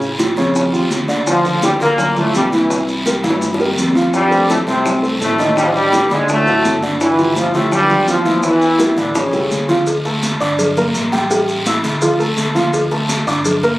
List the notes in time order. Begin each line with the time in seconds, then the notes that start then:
Already playing: A2 C#3 C#4 C#5
0.01 high bongo, high conga, maracas
0.18 F3 F4 G4, high bongo, high conga, short guiro, maracas
0.36 F2 C#3 C#4 C#5, high bongo, high conga, short guiro, maracas
0.54 high bongo, high conga, long guiro, maracas
0.73 F3 F4 G4, high bongo, high conga, maracas
0.90 D2, high bongo, low bongo, high conga, short guiro, maracas
1.08 D3 D4 D5, high conga, short guiro, maracas
1.27 F3 F4, high bongo, high conga, long guiro, maracas
1.44 F3 F4 A4, high bongo, high conga, maracas
1.62 G2 G3, high bongo, high conga, short guiro, maracas
1.80 D2 A#2 F3 A#3 F4 A4, high bongo, high conga, short guiro, maracas
1.98 high bongo, high conga, low conga, long guiro, maracas
2.16 A2 F3 A3 F4 A4, high bongo, high conga, low conga, maracas
2.34 C2 G2 G3, high bongo, low bongo, high conga, short guiro, maracas
2.52 E3 E4 E5, high conga, short guiro, maracas
2.69 E3 E4 E5, high bongo, long guiro, maracas
2.88 high bongo, high conga, maracas
3.06 G3 G4 A#4, high bongo, high conga, short guiro, maracas
3.23 G2 E3 E4 E5, high conga, short guiro, maracas
3.30 high bongo
3.41 high bongo, high conga, long guiro, maracas
3.54 high bongo
3.60 G3 G4 A#4, high conga, maracas
3.66 low bongo
3.77 F2, low bongo, high conga, short guiro, maracas
3.90 low bongo
3.95 F3 F4 F5, short guiro, maracas
4.02 low bongo
4.13 G2 G3, high bongo, high conga, long guiro, maracas
4.31 A3 A4 C5, high bongo, high conga, maracas
4.49 A2 A3, high bongo, high conga, short guiro, maracas
4.67 C2 C3 A3 C4 A4 C5, high bongo, high conga, short guiro, maracas
4.85 high bongo, high conga, low conga, long guiro, maracas
5.03 A3 A4 C5, high bongo, maracas
5.21 A1 A2 A3, high bongo, low bongo, high conga, short guiro, maracas
5.38 D#3 D#4 D#5, high conga, short guiro, maracas
5.56 G2 D#3 G3 D#4 D#5, high bongo, long guiro, maracas
5.65 F3
5.72 G2 G3, high bongo, high conga
5.76 maracas
5.92 G3 G4 A4, high bongo, high conga, short guiro, maracas
6.10 D2 G#2 D3 G#3 D4 D5, high bongo, high conga, short guiro, maracas
6.28 A2 A3, high bongo, high conga, long guiro, maracas
6.46 A1 F#3 F#4 A4, high bongo, high conga, maracas
6.64 G1, high bongo, low bongo, high conga, short guiro, maracas
6.82 D3 D4 D5, high conga, short guiro, maracas
7.00 E3 E4, high bongo, long guiro, maracas
7.18 F3 F4 G4, high bongo, high conga, maracas
7.36 F3 F4, high bongo, high conga, short guiro, maracas
7.54 D2 A2 F3 A3 F4 G4, high bongo, short guiro, maracas
7.71 G2 G3, high bongo, high conga, low conga, long guiro, maracas
7.90 F3 F4 G4, high bongo, high conga, low conga, maracas
8.07 E2 F3 F4, high bongo, low bongo, high conga, short guiro, maracas
8.25 E3 E4 E5, high conga, short guiro, maracas
8.43 E3 E4 E5, high bongo, long guiro, maracas
8.62 high bongo, high conga, maracas
8.78 G3 G4 A#4, high bongo, high conga, short guiro, maracas
8.96 A1 D3 E3 D4 E4 E5, high bongo, high conga, short guiro, maracas
9.15 C#3 C#4, high bongo, high conga, long guiro, maracas
9.32 C#2 G3 G4 A4, high bongo, high conga, maracas
9.50 D2, high conga, short guiro, maracas
9.69 F3 F4 F5, low bongo, short guiro, maracas
9.87 cowbell, high conga, long guiro, maracas
10.05 A3 A4 A5, cowbell, high conga, maracas
10.23 cowbell, high conga, short guiro, maracas
10.40 G1 D4 D5 D6, high conga, short guiro, maracas
10.59 cowbell, high conga, low conga, long guiro, maracas
10.77 A#3 A#4 A#5, cowbell, high conga, low conga, maracas
10.94 A1, cowbell, high conga, short guiro, maracas
11.12 G3 G4 G5, cowbell, high conga, short guiro, maracas
11.30 G3 G4 G5, cowbell, long guiro, maracas
11.49 cowbell, high conga, maracas
11.66 E4 E5 E6, cowbell, high conga, short guiro, maracas
11.83 D2, cowbell, high conga, short guiro, maracas
12.02 F3 F4 F5, cowbell, high conga, long guiro, maracas
12.19 A3 A4 A5, high conga, maracas
12.37 D2, cowbell, high conga, short guiro, maracas
12.55 F3 F4 F5, cowbell, high conga, short guiro, maracas
12.73 cowbell, long guiro, maracas
12.91 A3 A4 A5, cowbell, high conga, maracas
13.09 cowbell, high conga, short guiro, maracas
13.27 G1 D4 D5 D6, short guiro, maracas
13.45 cowbell, high conga, low conga, long guiro, maracas
13.63 A#3 A#4 A#5, cowbell, high conga, low conga, maracas